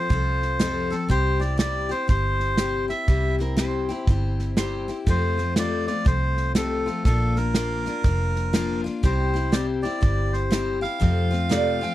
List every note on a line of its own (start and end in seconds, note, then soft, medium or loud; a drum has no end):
0.00 0.10 F4 soft
0.00 0.95 C5 loud
0.09 0.92 C2 medium
0.09 0.59 F3 medium
0.09 0.60 C4 medium
0.09 0.60 F4 medium
0.09 0.61 A4 medium
0.09 kick loud
0.09 snare soft
0.42 snare soft
0.59 0.91 F2 medium
0.59 0.91 C3 medium
0.59 0.91 F3 medium
0.59 0.91 C4 medium
0.59 0.91 F4 medium
0.59 0.89 A4 medium
0.59 snare loud
0.59 hi-hat pedal medium
0.90 1.09 F3 soft
0.90 1.08 C4 soft
0.90 1.10 F4 soft
0.90 1.09 A4 soft
0.90 1.08 A4 medium
0.90 snare soft
1.08 1.91 C2 medium
1.08 1.40 C3 medium
1.08 1.41 G3 medium
1.08 1.41 C4 medium
1.08 1.40 E4 medium
1.08 1.38 G4 medium
1.08 1.42 C5 loud
1.08 kick medium
1.08 snare soft
1.40 1.58 C4 soft
1.40 1.58 E4 soft
1.40 1.59 G4 medium
1.40 1.57 D5 medium
1.40 snare soft
1.57 1.90 C3 medium
1.57 1.90 G3 medium
1.57 1.90 C4 medium
1.57 1.90 E4 medium
1.57 1.88 G4 medium
1.57 1.91 D5 medium
1.57 snare loud
1.57 hi-hat pedal medium
1.89 2.08 C4 soft
1.89 2.09 E4 soft
1.89 2.08 G4 soft
1.89 2.08 C5 medium
1.89 snare soft
2.08 2.91 G1 medium
2.08 2.57 G3 soft
2.08 2.58 C4 medium
2.08 2.58 E4 medium
2.08 2.58 G4 medium
2.08 2.86 C5 loud
2.08 kick loud
2.08 snare soft
2.40 snare soft
2.57 2.89 C3 medium
2.57 2.90 G3 medium
2.57 2.90 C4 medium
2.57 2.89 E4 medium
2.57 2.87 G4 medium
2.57 snare loud
2.57 hi-hat pedal medium
2.88 3.08 C4 soft
2.88 3.08 E4 soft
2.88 3.07 G4 soft
2.88 3.36 E5 medium
2.88 snare soft
3.08 3.90 C2 medium
3.08 3.39 C3 medium
3.08 3.39 G3 medium
3.08 3.40 C4 medium
3.08 3.39 E4 medium
3.08 3.37 G4 medium
3.08 kick medium
3.08 snare soft
3.38 3.57 C4 soft
3.38 3.58 E4 soft
3.38 3.57 G4 soft
3.38 3.57 A#4 medium
3.38 snare soft
3.57 3.88 C3 medium
3.57 3.89 G3 medium
3.57 3.89 C4 medium
3.57 3.89 E4 medium
3.57 3.87 G4 medium
3.57 4.54 C5 medium
3.57 snare loud
3.57 hi-hat pedal medium
3.89 4.07 C4 soft
3.89 4.08 E4 medium
3.89 4.07 G4 medium
3.89 snare soft
4.07 4.89 G1 medium
4.07 4.56 G3 medium
4.07 4.57 C4 medium
4.07 4.58 E4 medium
4.07 4.57 G4 medium
4.07 kick loud
4.07 snare soft
4.39 snare soft
4.57 4.88 C3 medium
4.57 4.88 G3 medium
4.57 4.89 C4 medium
4.57 4.89 E4 medium
4.57 4.87 G4 medium
4.57 4.96 C5 medium
4.57 snare loud
4.57 hi-hat pedal medium
4.88 5.07 C4 soft
4.88 5.08 E4 soft
4.88 5.07 G4 medium
4.88 snare soft
5.06 5.38 F2 medium
5.06 5.89 F2 medium
5.06 5.38 C3 medium
5.06 5.38 F3 medium
5.06 5.39 A3 medium
5.06 5.38 C4 medium
5.06 5.36 F4 medium
5.06 5.54 C5 medium
5.06 kick medium
5.06 snare soft
5.37 5.56 F3 soft
5.37 5.56 A3 soft
5.37 5.57 C4 soft
5.37 5.56 F4 soft
5.37 snare soft
5.56 5.87 F2 medium
5.56 5.88 C3 medium
5.56 5.88 F3 medium
5.56 5.88 A3 medium
5.56 5.88 C4 medium
5.56 5.87 F4 medium
5.56 5.86 D5 medium
5.56 snare loud
5.56 hi-hat pedal medium
5.87 6.05 A3 soft
5.87 6.06 C4 soft
5.87 6.06 F4 soft
5.87 6.06 D5 medium
5.87 snare soft
5.92 6.04 F3 soft
6.05 6.88 C2 medium
6.05 6.55 F3 medium
6.05 6.55 A3 medium
6.05 6.55 C4 medium
6.05 6.56 F4 medium
6.05 6.52 C5 medium
6.05 kick loud
6.05 snare soft
6.37 snare soft
6.55 6.86 F2 medium
6.55 6.86 C3 medium
6.55 6.87 F3 medium
6.55 6.87 A3 medium
6.55 6.86 C4 medium
6.55 6.85 F4 medium
6.55 7.03 A4 medium
6.55 snare loud
6.55 hi-hat pedal medium
6.86 7.05 F3 soft
6.86 7.06 A3 soft
6.86 7.06 C4 soft
6.86 7.05 F4 soft
6.86 snare soft
7.05 7.87 A#1 medium
7.05 7.36 A#2 medium
7.05 7.37 F3 medium
7.05 7.37 A#3 medium
7.05 7.37 D4 medium
7.05 7.36 F4 medium
7.05 7.37 A4 medium
7.05 kick loud
7.05 snare soft
7.36 7.55 A#3 soft
7.36 7.55 D4 soft
7.36 7.55 F4 medium
7.36 8.81 A#4 medium
7.36 snare soft
7.54 7.86 A#2 medium
7.54 7.86 F3 medium
7.54 7.87 A#3 medium
7.54 7.86 D4 medium
7.54 7.85 F4 medium
7.54 snare loud
7.54 hi-hat pedal medium
7.86 8.04 A#3 soft
7.86 8.05 D4 medium
7.86 8.04 F4 medium
7.86 snare soft
8.04 8.86 F1 medium
8.04 8.53 F3 medium
8.04 8.53 A#3 medium
8.04 8.54 D4 medium
8.04 8.54 F4 medium
8.04 kick loud
8.04 snare soft
8.36 snare soft
8.53 8.85 A#2 medium
8.53 8.85 F3 medium
8.53 8.85 A#3 loud
8.53 8.85 D4 medium
8.53 8.83 F4 medium
8.53 snare loud
8.53 hi-hat pedal medium
8.84 9.04 A#3 soft
8.84 9.04 D4 soft
8.84 9.03 F4 medium
8.84 snare soft
9.03 9.85 C2 medium
9.03 9.34 C3 medium
9.03 9.35 G3 medium
9.03 9.35 C4 medium
9.03 9.35 E4 medium
9.03 9.32 G4 medium
9.03 9.55 C5 medium
9.03 kick loud
9.03 snare soft
9.34 9.52 C4 soft
9.34 9.53 E4 soft
9.34 9.53 G4 medium
9.34 snare soft
9.52 9.84 C3 medium
9.52 9.84 G3 medium
9.52 9.84 C4 medium
9.52 9.84 E4 medium
9.52 9.82 G4 medium
9.52 9.66 D5 medium
9.52 snare loud
9.52 hi-hat pedal medium
9.82 10.00 C4 soft
9.82 10.02 E4 medium
9.82 10.02 G4 medium
9.82 10.34 D5 medium
9.82 snare soft
10.01 10.84 G1 medium
10.01 10.50 G3 medium
10.01 10.52 C4 medium
10.01 10.52 E4 medium
10.01 10.52 G4 medium
10.01 kick loud
10.01 snare soft
10.33 10.79 C5 medium
10.33 snare soft
10.51 10.82 C3 medium
10.51 10.83 G3 medium
10.51 10.83 C4 medium
10.51 10.82 E4 medium
10.51 10.80 G4 medium
10.51 snare loud
10.51 hi-hat pedal medium
10.81 11.00 C4 soft
10.81 11.01 E4 soft
10.81 11.01 G4 soft
10.81 11.95 F5 medium
10.81 snare soft
11.00 11.32 F2 medium
11.00 11.84 F2 medium
11.00 11.32 C3 medium
11.00 11.32 F3 medium
11.00 11.32 A3 medium
11.00 11.31 C4 medium
11.00 11.29 F4 medium
11.00 kick medium
11.00 snare soft
11.31 11.50 F3 soft
11.31 11.50 A3 soft
11.31 11.50 C4 soft
11.31 11.50 F4 medium
11.31 snare soft
11.49 11.81 F2 medium
11.49 11.82 C3 medium
11.49 11.82 F3 medium
11.49 11.82 A3 medium
11.49 11.81 C4 medium
11.49 11.80 F4 medium
11.49 11.82 D5 medium
11.49 snare loud
11.49 hi-hat pedal medium
11.81 11.95 F3 soft
11.81 11.95 A3 soft
11.81 11.95 C4 soft
11.81 11.95 F4 medium
11.81 11.95 G5 medium
11.81 snare soft